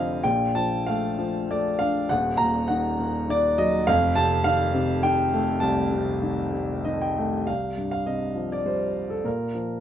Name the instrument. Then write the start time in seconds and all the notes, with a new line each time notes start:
grand piano
Already playing: F1 F2 C3 D3 F3 C5 D#5 F5
0.23 A#1 A#2 G5
0.55 F3 A5
0.86 A3 F5
1.18 F3
1.50 A3 D5
1.79 D4 F5
2.09 D#1 D#2 F#5
2.37 A#2 A#5
2.68 D#3 F#5
2.99 A#2
3.29 D#3 D5
3.58 F#3 D#5
3.87 F1 F2 F5
4.15 C3 A5
4.44 D#3 F5
4.74 C3
5.03 D#3 G5
5.34 A3
5.60 C2 A5
5.92 C3
6.22 D#3
6.53 C3
6.85 D#3 D#5
7.01 G5
7.18 A3
7.47 C2 F5
7.78 G2
7.91 F5
8.06 C3 D#5
8.35 F3
8.52 D5
8.65 G3 C5
9.10 A4
9.24 A#2 A#4
9.55 F3